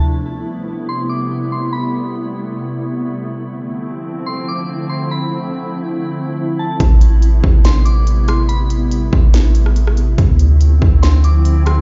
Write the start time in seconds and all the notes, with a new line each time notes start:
0.04 C3 G3 A3 B3 E4
0.89 C6
1.09 D6
1.52 C6
1.73 B5
3.42 D3 F3 C4
4.26 C6
4.48 D6
4.89 C6
5.11 B5
6.59 A5
6.80 A1 C3 G3 A3 B3, kick, closed hi-hat
7.01 closed hi-hat
7.22 closed hi-hat
7.44 A1, kick
7.65 C6, snare, closed hi-hat
7.85 D6, closed hi-hat
8.07 closed hi-hat
8.28 C6, cross-stick, closed hi-hat
8.49 B5, closed hi-hat
8.70 closed hi-hat
8.91 closed hi-hat
9.13 A1, kick
9.34 snare, closed hi-hat
9.55 closed hi-hat
9.66 cross-stick
9.76 closed hi-hat
9.87 cross-stick
9.97 closed hi-hat
10.18 D2 D3 F3 C4 E4, kick, closed hi-hat
10.39 closed hi-hat
10.61 closed hi-hat
10.82 D2, kick
11.02 C6, snare, closed hi-hat
11.24 D6, closed hi-hat
11.45 closed hi-hat
11.66 C6, cross-stick, closed hi-hat